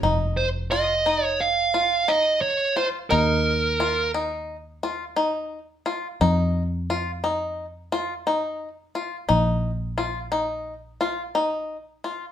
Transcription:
0.03 F1 D#4
0.37 C5
0.71 F4 D#5
1.06 D#4
1.24 C#5
1.41 F5
1.74 F4
2.08 D#4 D#5
2.41 C#5
2.77 F4 C5
3.10 D#2 D#4 A#4
3.80 F4
4.14 D#4
4.83 F4
5.16 D#4
5.86 F4
6.21 F2 D#4
6.90 F4
7.24 D#4
7.92 F4
8.27 D#4
8.95 F4
9.29 A#1 D#4
9.98 F4
10.32 D#4
11.01 F4
11.35 D#4
12.04 F4

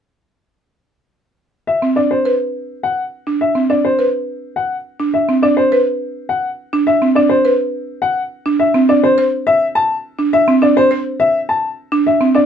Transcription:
1.67 E5
1.82 C4
1.96 D4 D5
2.11 C5
2.25 B4
2.83 F#5
3.27 D4
3.41 E5
3.55 C4
3.70 D4 D5
3.85 C5
3.99 B4
4.56 F#5
5.00 D4
5.14 E5
5.29 C4
5.43 D4 D5
5.57 C5
5.72 B4
6.29 F#5
6.73 D4
6.87 E5
7.02 C4
7.15 D4 D5
7.29 C5
7.45 B4
8.02 F#5
8.46 D4
8.60 E5
8.74 C4
8.89 D4 D5
9.03 C5
9.18 C5
9.47 E5
9.75 A5
10.19 D4
10.33 E5
10.48 C4
10.62 D4 D5
10.77 C5
10.91 C5
11.20 E5
11.49 A5
11.92 D4
12.07 E5
12.21 C4
12.35 D4 D5

